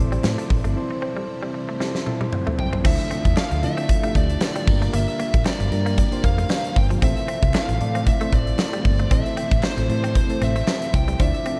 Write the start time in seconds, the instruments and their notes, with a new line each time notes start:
Already playing: fingered electric bass A1, string machine C3 E3 A3 E4, synth keys C4 E4 D5
0.00 synth keys A4 C5
0.12 clean electric guitar G3, closed hi-hat
0.24 fingered electric bass A2, snare, clap, tambourine
0.38 clean electric guitar A3, closed hi-hat
0.50 fingered electric bass A1, muted clean electric guitar stroke, kick, open hi-hat
0.64 fingered electric bass G1, clean electric guitar A3, closed hi-hat
0.76 string machine G3, synth keys C4 E4 A4 C5
0.91 muted clean electric guitar stroke
1.02 clean electric guitar C4
1.17 clean electric guitar G3
1.43 clean electric guitar G3
1.54 muted clean electric guitar stroke
1.69 clean electric guitar A3
1.80 clean electric guitar G3, synth keys C4 E4 A4 C5, snare
1.95 snare
2.06 synth keys C4 E4 A4 C5, muted clean electric guitar stroke, high tom
2.21 clean electric guitar G3, high tom
2.33 mid tom
2.47 clean electric guitar A3, mid tom
2.58 lead electric guitar G5, muted clean electric guitar stroke, floor tom
2.73 clean electric guitar C4, floor tom
2.85 fingered electric bass D2, string machine D3 F3 A3 E5, synth keys A3 D4 E4 F4 A4, clean electric guitar C4, lead electric guitar E5, kick, crash
2.99 closed hi-hat
3.11 clean electric guitar C4, closed hi-hat
3.25 fingered electric bass E2, muted clean electric guitar stroke, kick, closed hi-hat
3.37 clean electric guitar D4, lead electric guitar F5, snare, clap, tambourine
3.51 fingered electric bass D2, muted clean electric guitar stroke, closed hi-hat
3.63 fingered electric bass D3, synth keys A3 D4 E4 F4 A4, lead electric guitar E5, closed hi-hat
3.77 clean electric guitar C4, closed hi-hat
3.89 muted clean electric guitar stroke, kick, closed hi-hat
4.03 synth keys A3 D4 E4 F4 G4, clean electric guitar A3, closed hi-hat
4.15 fingered electric bass D2, clean electric guitar A3, lead electric guitar D5, kick, closed hi-hat
4.29 closed hi-hat
4.41 snare, clap, tambourine
4.56 clean electric guitar G3, closed hi-hat
4.67 fingered electric bass G1, string machine G3 A#3 F4, synth keys A#3 D4 F4 G4 A#4, muted clean electric guitar stroke, kick, crash
4.82 clean electric guitar A3, closed hi-hat
4.93 fingered electric bass G1, clean electric guitar A#3, lead electric guitar E5, closed hi-hat
5.08 closed hi-hat
5.20 clean electric guitar A#3, closed hi-hat
5.34 fingered electric bass A1, muted clean electric guitar stroke, kick, closed hi-hat
5.45 clean electric guitar C4, lead electric guitar D5, snare, clap, tambourine
5.60 fingered electric bass G1, muted clean electric guitar stroke, closed hi-hat
5.71 fingered electric bass G2, synth keys A#3 D4 F4 G4 A#4, closed hi-hat
5.86 clean electric guitar A#3, closed hi-hat
5.98 lead electric guitar D5, muted clean electric guitar stroke, kick, closed hi-hat
6.11 synth keys A#3 D4 F4 G4 C5, closed hi-hat
6.24 fingered electric bass F2, clean electric guitar A#3, lead electric guitar F5, kick, closed hi-hat
6.38 clean electric guitar A3, closed hi-hat
6.50 clean electric guitar G3, snare, clap, tambourine
6.64 closed hi-hat
6.76 fingered electric bass G1, lead electric guitar G5, muted clean electric guitar stroke, kick, open hi-hat
6.90 clean electric guitar F3, closed hi-hat
7.02 fingered electric bass A1, string machine C3 E3 A3 C4, synth keys A3 C4 E4 A4 C5, clean electric guitar C4, lead electric guitar E5, kick, closed hi-hat
7.17 closed hi-hat
7.28 clean electric guitar C4, closed hi-hat
7.43 fingered electric bass C2, muted clean electric guitar stroke, kick, closed hi-hat
7.54 clean electric guitar D4, lead electric guitar F5, snare, clap, tambourine
7.69 fingered electric bass A1, muted clean electric guitar stroke, closed hi-hat
7.80 fingered electric bass A2, synth keys A3 C4 E4 A4 D5, closed hi-hat
7.95 clean electric guitar C4, closed hi-hat
8.07 lead electric guitar E5, muted clean electric guitar stroke, kick, closed hi-hat
8.20 synth keys A3 C4 E4 A4 C5, clean electric guitar A3, closed hi-hat
8.33 fingered electric bass A1, clean electric guitar A3, lead electric guitar D5, kick, closed hi-hat
8.47 closed hi-hat
8.59 snare, clap, tambourine
8.73 clean electric guitar G3, closed hi-hat
8.85 fingered electric bass G1, muted clean electric guitar stroke, kick, open hi-hat
8.99 clean electric guitar A3, closed hi-hat
9.11 fingered electric bass A1, synth keys A3 C4 E4 A4 C5, clean electric guitar C4, lead electric guitar E5, kick, closed hi-hat
9.26 closed hi-hat
9.37 clean electric guitar C4, closed hi-hat
9.51 fingered electric bass A1, muted clean electric guitar stroke, kick, closed hi-hat
9.63 clean electric guitar D4, lead electric guitar C5, snare, clap, tambourine
9.77 fingered electric bass A1, muted clean electric guitar stroke, closed hi-hat
9.89 fingered electric bass A2, synth keys A3 C4 E4 A4 C5, closed hi-hat
10.04 clean electric guitar C4, closed hi-hat
10.15 lead electric guitar C5, muted clean electric guitar stroke, kick, closed hi-hat
10.29 synth keys A3 C4 E4 A4 C5, closed hi-hat
10.41 fingered electric bass A1, clean electric guitar C4, lead electric guitar E5, closed hi-hat
10.56 clean electric guitar A3, closed hi-hat
10.67 clean electric guitar G3, snare, clap, tambourine
10.82 closed hi-hat
10.94 fingered electric bass C2, lead electric guitar G5, muted clean electric guitar stroke, kick, closed hi-hat
11.08 clean electric guitar G3, closed hi-hat
11.20 fingered electric bass D2, string machine D3 F3 A3, clean electric guitar C4, synth keys D4 E4 F4 A4 D5, lead electric guitar E5, kick, closed hi-hat
11.34 closed hi-hat
11.46 clean electric guitar C4, closed hi-hat